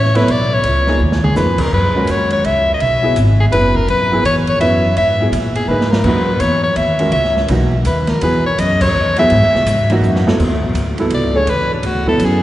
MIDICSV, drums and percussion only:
0, 0, Header, 1, 2, 480
1, 0, Start_track
1, 0, Tempo, 361664
1, 839, Time_signature, 3, 2, 24, 8
1, 16493, End_track
2, 0, Start_track
2, 0, Title_t, "Drums"
2, 63, Note_on_c, 9, 38, 29
2, 196, Note_off_c, 9, 38, 0
2, 202, Note_on_c, 9, 51, 46
2, 225, Note_on_c, 9, 38, 39
2, 334, Note_off_c, 9, 51, 0
2, 357, Note_off_c, 9, 38, 0
2, 374, Note_on_c, 9, 51, 59
2, 507, Note_off_c, 9, 51, 0
2, 843, Note_on_c, 9, 51, 57
2, 975, Note_off_c, 9, 51, 0
2, 1153, Note_on_c, 9, 38, 40
2, 1286, Note_off_c, 9, 38, 0
2, 1488, Note_on_c, 9, 38, 64
2, 1621, Note_off_c, 9, 38, 0
2, 1644, Note_on_c, 9, 47, 83
2, 1777, Note_off_c, 9, 47, 0
2, 1803, Note_on_c, 9, 44, 58
2, 1807, Note_on_c, 9, 38, 54
2, 1935, Note_off_c, 9, 44, 0
2, 1939, Note_off_c, 9, 38, 0
2, 2099, Note_on_c, 9, 49, 77
2, 2103, Note_on_c, 9, 36, 74
2, 2232, Note_off_c, 9, 49, 0
2, 2235, Note_off_c, 9, 36, 0
2, 2751, Note_on_c, 9, 44, 50
2, 2751, Note_on_c, 9, 51, 62
2, 2883, Note_off_c, 9, 44, 0
2, 2883, Note_off_c, 9, 51, 0
2, 3059, Note_on_c, 9, 51, 45
2, 3191, Note_off_c, 9, 51, 0
2, 3244, Note_on_c, 9, 51, 55
2, 3377, Note_off_c, 9, 51, 0
2, 3719, Note_on_c, 9, 51, 48
2, 3852, Note_off_c, 9, 51, 0
2, 4194, Note_on_c, 9, 44, 65
2, 4194, Note_on_c, 9, 51, 62
2, 4327, Note_off_c, 9, 44, 0
2, 4327, Note_off_c, 9, 51, 0
2, 4678, Note_on_c, 9, 51, 62
2, 4811, Note_off_c, 9, 51, 0
2, 4977, Note_on_c, 9, 36, 60
2, 5109, Note_off_c, 9, 36, 0
2, 5154, Note_on_c, 9, 51, 49
2, 5287, Note_off_c, 9, 51, 0
2, 5643, Note_on_c, 9, 44, 47
2, 5643, Note_on_c, 9, 51, 66
2, 5775, Note_off_c, 9, 44, 0
2, 5775, Note_off_c, 9, 51, 0
2, 5935, Note_on_c, 9, 51, 45
2, 6068, Note_off_c, 9, 51, 0
2, 6114, Note_on_c, 9, 51, 57
2, 6247, Note_off_c, 9, 51, 0
2, 6591, Note_on_c, 9, 51, 58
2, 6723, Note_off_c, 9, 51, 0
2, 7072, Note_on_c, 9, 44, 55
2, 7072, Note_on_c, 9, 51, 73
2, 7204, Note_off_c, 9, 44, 0
2, 7204, Note_off_c, 9, 51, 0
2, 7372, Note_on_c, 9, 51, 47
2, 7505, Note_off_c, 9, 51, 0
2, 7550, Note_on_c, 9, 47, 45
2, 7683, Note_off_c, 9, 47, 0
2, 7710, Note_on_c, 9, 38, 56
2, 7842, Note_off_c, 9, 38, 0
2, 7867, Note_on_c, 9, 38, 78
2, 7999, Note_off_c, 9, 38, 0
2, 8015, Note_on_c, 9, 49, 68
2, 8018, Note_on_c, 9, 36, 62
2, 8147, Note_off_c, 9, 49, 0
2, 8151, Note_off_c, 9, 36, 0
2, 8491, Note_on_c, 9, 44, 65
2, 8491, Note_on_c, 9, 51, 65
2, 8623, Note_off_c, 9, 44, 0
2, 8623, Note_off_c, 9, 51, 0
2, 8971, Note_on_c, 9, 51, 56
2, 9104, Note_off_c, 9, 51, 0
2, 9277, Note_on_c, 9, 51, 47
2, 9409, Note_off_c, 9, 51, 0
2, 9447, Note_on_c, 9, 51, 56
2, 9579, Note_off_c, 9, 51, 0
2, 9616, Note_on_c, 9, 38, 30
2, 9749, Note_off_c, 9, 38, 0
2, 9778, Note_on_c, 9, 38, 42
2, 9911, Note_off_c, 9, 38, 0
2, 9932, Note_on_c, 9, 51, 66
2, 10065, Note_off_c, 9, 51, 0
2, 10416, Note_on_c, 9, 44, 60
2, 10416, Note_on_c, 9, 51, 66
2, 10548, Note_off_c, 9, 44, 0
2, 10548, Note_off_c, 9, 51, 0
2, 10713, Note_on_c, 9, 51, 46
2, 10717, Note_on_c, 9, 38, 57
2, 10845, Note_off_c, 9, 51, 0
2, 10849, Note_off_c, 9, 38, 0
2, 10900, Note_on_c, 9, 51, 62
2, 11032, Note_off_c, 9, 51, 0
2, 11393, Note_on_c, 9, 44, 62
2, 11393, Note_on_c, 9, 51, 78
2, 11526, Note_off_c, 9, 44, 0
2, 11526, Note_off_c, 9, 51, 0
2, 11691, Note_on_c, 9, 49, 76
2, 11693, Note_on_c, 9, 36, 83
2, 11824, Note_off_c, 9, 49, 0
2, 11825, Note_off_c, 9, 36, 0
2, 12164, Note_on_c, 9, 51, 51
2, 12168, Note_on_c, 9, 38, 33
2, 12296, Note_off_c, 9, 51, 0
2, 12300, Note_off_c, 9, 38, 0
2, 12342, Note_on_c, 9, 51, 57
2, 12475, Note_off_c, 9, 51, 0
2, 12514, Note_on_c, 9, 38, 28
2, 12647, Note_off_c, 9, 38, 0
2, 12677, Note_on_c, 9, 38, 45
2, 12810, Note_off_c, 9, 38, 0
2, 12827, Note_on_c, 9, 44, 67
2, 12827, Note_on_c, 9, 51, 71
2, 12960, Note_off_c, 9, 44, 0
2, 12960, Note_off_c, 9, 51, 0
2, 13135, Note_on_c, 9, 51, 47
2, 13267, Note_off_c, 9, 51, 0
2, 13313, Note_on_c, 9, 44, 51
2, 13445, Note_off_c, 9, 44, 0
2, 13477, Note_on_c, 9, 38, 59
2, 13609, Note_off_c, 9, 38, 0
2, 13638, Note_on_c, 9, 38, 87
2, 13771, Note_off_c, 9, 38, 0
2, 13793, Note_on_c, 9, 36, 64
2, 13800, Note_on_c, 9, 49, 67
2, 13925, Note_off_c, 9, 36, 0
2, 13933, Note_off_c, 9, 49, 0
2, 14268, Note_on_c, 9, 44, 57
2, 14268, Note_on_c, 9, 51, 61
2, 14401, Note_off_c, 9, 44, 0
2, 14401, Note_off_c, 9, 51, 0
2, 14571, Note_on_c, 9, 51, 44
2, 14704, Note_off_c, 9, 51, 0
2, 14738, Note_on_c, 9, 51, 61
2, 14871, Note_off_c, 9, 51, 0
2, 15223, Note_on_c, 9, 51, 59
2, 15356, Note_off_c, 9, 51, 0
2, 15700, Note_on_c, 9, 51, 67
2, 15833, Note_off_c, 9, 51, 0
2, 16011, Note_on_c, 9, 36, 55
2, 16143, Note_off_c, 9, 36, 0
2, 16186, Note_on_c, 9, 44, 57
2, 16186, Note_on_c, 9, 51, 63
2, 16319, Note_off_c, 9, 44, 0
2, 16319, Note_off_c, 9, 51, 0
2, 16493, End_track
0, 0, End_of_file